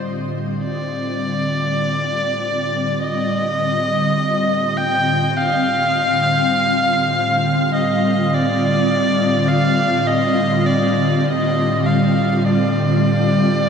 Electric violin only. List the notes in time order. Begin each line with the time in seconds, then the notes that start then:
0.64 D5
3.00 D#5
4.77 G5
5.37 F5
7.74 D#5
8.34 D5
9.48 F5
10.07 D#5
10.67 D5
11.28 D#5
11.86 F5
12.48 D5